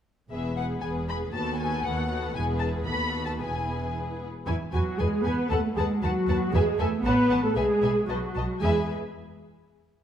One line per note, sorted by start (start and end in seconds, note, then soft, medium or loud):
0.30 0.77 E1 soft
0.30 0.76 E2 soft
0.30 0.55 B3 soft
0.30 0.55 G#4 soft
0.30 0.56 G#4 soft
0.30 0.56 B4 soft
0.30 0.56 E5 soft
0.56 0.81 B3 soft
0.56 0.81 G#4 soft
0.56 0.83 G#4 soft
0.56 0.83 B4 soft
0.56 0.65 F#5 medium
0.82 1.28 E1 soft
0.82 1.28 E2 soft
0.82 1.07 B3 soft
0.82 1.07 G#4 soft
0.82 1.09 G#4 soft
0.82 1.08 B4 soft
0.82 0.90 G#5 soft
1.08 1.32 B3 soft
1.08 1.33 G#4 soft
1.08 1.35 G#4 soft
1.08 1.35 B4 soft
1.08 1.17 B5 medium
1.33 1.79 D#2 soft
1.33 1.59 B3 soft
1.33 1.58 F#4 soft
1.33 1.60 A4 soft
1.33 1.60 B4 soft
1.33 1.59 A5 medium
1.59 1.84 B3 soft
1.59 1.84 F#4 soft
1.59 1.86 A4 soft
1.59 1.86 B4 soft
1.59 1.84 G#5 medium
1.84 2.29 D#2 medium
1.84 2.30 D#2 soft
1.84 2.09 B3 soft
1.84 2.09 F#4 soft
1.84 2.09 A4 soft
1.84 2.09 B4 soft
1.84 2.35 F#5 medium
2.10 2.34 B3 soft
2.10 2.35 F#4 soft
2.10 2.35 A4 soft
2.10 2.35 B4 soft
2.35 2.83 E1 soft
2.35 2.83 E2 medium
2.35 2.83 B3 soft
2.35 2.83 E4 soft
2.35 2.84 G#4 soft
2.35 2.84 B4 soft
2.35 2.44 G#5 medium
2.60 2.68 A5 medium
2.85 3.39 D#2 medium
2.85 3.39 D#2 soft
2.85 3.37 B3 soft
2.85 3.39 F#4 soft
2.85 3.39 A4 soft
2.85 3.39 B4 soft
2.85 3.25 B5 medium
3.25 3.31 A5 medium
3.38 4.26 E1 soft
3.38 4.25 E2 soft
3.38 4.24 B3 soft
3.38 4.26 E4 soft
3.38 4.25 G#4 soft
3.38 4.25 B4 soft
3.38 3.92 G#5 soft
4.46 4.55 E2 medium
4.46 4.54 E3 medium
4.46 4.55 E4 medium
4.46 4.55 B4 medium
4.46 4.55 G#5 medium
4.46 4.56 G#5 medium
4.72 4.82 E2 medium
4.72 4.98 F#3 medium
4.72 4.98 F#4 medium
4.72 4.82 B4 soft
4.72 4.81 G#5 medium
4.72 4.82 G#5 medium
4.99 5.07 E2 medium
4.99 5.25 G#3 medium
4.99 5.24 G#4 medium
4.99 5.08 B4 soft
4.99 5.07 G#5 soft
4.99 5.08 G#5 soft
5.24 5.33 E2 medium
5.24 5.50 B3 medium
5.24 5.50 B4 medium
5.24 5.35 B4 medium
5.24 5.32 G#5 soft
5.24 5.34 G#5 soft
5.50 5.59 D#2 medium
5.50 5.76 A3 medium
5.50 5.58 A4 medium
5.50 5.59 B4 medium
5.50 5.59 F#5 medium
5.50 5.58 A5 medium
5.76 5.84 D#2 medium
5.76 6.01 G#3 medium
5.76 5.84 G#4 medium
5.76 5.86 B4 medium
5.76 5.87 F#5 medium
5.76 5.85 A5 medium
6.02 6.11 D#2 medium
6.02 6.53 F#3 medium
6.02 6.52 F#4 medium
6.02 6.12 B4 medium
6.02 6.12 F#5 medium
6.02 6.10 A5 medium
6.28 6.36 D#2 medium
6.28 6.37 B4 medium
6.28 6.37 F#5 soft
6.28 6.37 A5 medium
6.53 6.61 E2 medium
6.53 6.78 G#3 medium
6.53 6.79 G#4 medium
6.53 6.62 B4 medium
6.53 6.62 E5 medium
6.53 6.63 G#5 medium
6.78 6.87 E2 medium
6.78 7.04 A3 medium
6.78 6.88 A4 medium
6.78 6.87 B4 medium
6.78 6.87 E5 medium
6.78 6.88 G#5 medium
7.03 7.12 A1 medium
7.03 7.42 B3 medium
7.03 7.43 B4 loud
7.03 7.13 C#5 medium
7.03 7.13 F#5 medium
7.03 7.13 A5 medium
7.30 7.38 A1 medium
7.30 7.38 C#5 medium
7.30 7.38 F#5 medium
7.30 7.39 A5 medium
7.42 7.48 A3 medium
7.42 7.57 A4 medium
7.55 7.64 B1 medium
7.55 8.08 G#3 medium
7.55 8.08 G#4 medium
7.55 7.63 B4 medium
7.55 7.64 E5 medium
7.55 7.65 G#5 medium
7.82 7.90 B1 medium
7.82 7.90 B4 medium
7.82 7.91 E5 soft
7.82 7.92 G#5 medium
8.08 8.17 B1 medium
8.08 8.61 F#3 medium
8.08 8.62 F#4 medium
8.08 8.17 B4 soft
8.08 8.17 D#5 soft
8.08 8.17 A5 soft
8.36 8.44 B1 soft
8.36 8.45 B4 soft
8.36 8.45 D#5 soft
8.36 8.44 A5 soft
8.61 8.92 E2 medium
8.61 8.92 G#3 medium
8.61 8.92 G#4 medium
8.61 8.93 B4 medium
8.61 8.93 E5 medium
8.61 8.92 G#5 medium